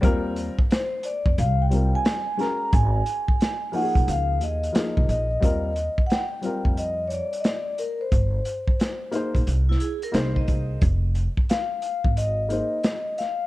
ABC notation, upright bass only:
X:1
M:4/4
L:1/16
Q:"Swing 16ths" 1/4=89
K:Eb
V:1 name="Upright bass" clef=bass
E,,3 z4 F,, C,,4 z4 | A,,,2 z4 z _C,, _D,,2 E,,2 z C,, B,,,2 | E,,3 z4 F,,4 z4 z | G,,,2 z4 z B,,, C,,2 z2 C,,2 C,,2 |
F,,,3 z4 A,,,4 z4 z |]